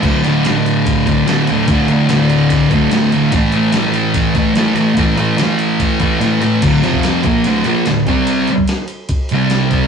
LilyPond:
<<
  \new Staff \with { instrumentName = "Distorted electric guitar" } { \clef bass \time 4/4 \key d \minor \tempo 4 = 145 <d, a, d>8 <a, d>8 <d, a, d>4. <a, d>8 <d, a, d>8 <a, d>8 | <d, a, d>8 <a, d>8 <d, a, d>4. <a, d>8 <d, a, d>8 <a, d>8 | <a, e a>8 <e a>8 <a, e a>4. <e a>8 <a, e a>8 <e a>8 | <a, e a>8 <e a>8 <a, e a>4. <e a>8 <a, e a>8 <e a>8 |
<d, a, d>8 <f, c f>4 <bes, f bes>8 <d, a, d>8 <bes, f bes>8 <d, a,>8 <c g c'>8~ | <c g c'>8 r2 <c g c'>4. | }
  \new DrumStaff \with { instrumentName = "Drums" } \drummode { \time 4/4 <cymc bd>8 cymr8 <cymr sn>16 sn16 cymr8 <bd cymr>8 <bd cymr>8 <cymr sn>8 cymr8 | <bd cymr>8 cymr8 <cymr sn>8 cymr8 <bd cymr>8 <bd cymr>8 <cymr sn>8 cymr8 | <bd cymr>8 cymr8 <cymr sn>16 sn16 cymr8 <bd cymr>8 <bd cymr>8 <cymr sn>8 cymr8 | <bd cymr>8 cymr8 <cymr sn>8 cymr8 <bd cymr>8 <bd cymr>8 cymr8 cymr8 |
<cymc bd cymr>8 cymr16 bd16 <cymr sn>8 <bd cymr>8 cymr8 cymr8 <cymr sn>8 <bd cymr>8 | cymr8 cymr16 bd16 <cymr sn>8 cymr8 <bd cymr>8 cymr8 <cymr sn>8 <bd cymr>8 | }
>>